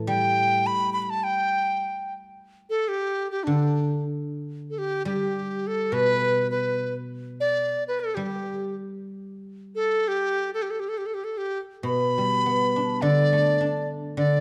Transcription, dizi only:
0.08 0.68 G5 loud
0.67 0.93 B5 loud
0.93 1.02 B5 loud
1.02 1.11 B5 medium
1.10 1.25 A5 medium
1.24 2.14 G5 loud
2.70 2.90 A4 medium
2.88 3.31 G4 medium
3.31 3.45 G4 medium
3.44 4.04 D4 medium
4.70 4.80 A4 medium
4.78 5.05 G4 medium
5.06 5.69 G4 medium
5.67 5.95 A4 medium
5.93 6.50 B4 loud
6.51 6.94 B4 medium
7.40 7.84 D5 medium
7.88 8.01 B4 medium
8.00 8.16 A4 medium
8.15 8.76 G4 medium
9.75 10.09 A4 medium
10.08 10.51 G4 medium
10.54 10.64 A4 medium
10.62 10.72 G4 medium
10.71 10.81 A4 medium
10.80 10.90 G4 medium
10.89 10.99 A4 medium
10.98 11.08 G4 medium
11.06 11.16 A4 medium
11.14 11.26 G4 medium
11.24 11.39 A4 medium
11.38 11.59 G4 medium
11.85 13.03 B5 loud
13.02 13.89 D5 medium
14.18 14.40 D5 medium

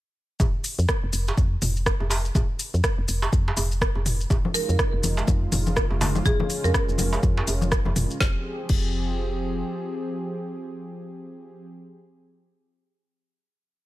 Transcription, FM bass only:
0.40 0.50 F1 loud
0.79 0.86 F2 loud
1.04 1.11 F1 loud
1.13 1.32 F1 medium
1.38 1.56 F2 medium
1.62 1.94 F1 medium
2.01 2.31 F1 medium
2.35 2.45 F1 loud
2.74 2.81 F2 loud
2.98 3.05 F1 loud
3.09 3.27 F1 loud
3.33 3.51 F2 medium
3.57 3.89 F1 loud
3.96 4.26 F1 medium
4.30 4.41 F1 loud
4.69 4.76 F2 loud
4.93 5.01 F1 loud
5.04 5.22 F1 medium
5.28 5.46 F2 medium
5.52 5.84 F1 medium
5.91 6.21 F1 medium
6.26 6.36 F1 loud
6.64 6.71 F2 loud
6.89 6.96 F1 loud
6.99 7.17 F1 medium
7.23 7.42 F2 medium
7.48 7.80 F1 medium
7.86 7.93 F1 loud
7.96 8.07 F1 loud
8.21 8.36 F1 loud
8.70 9.63 F1 loud

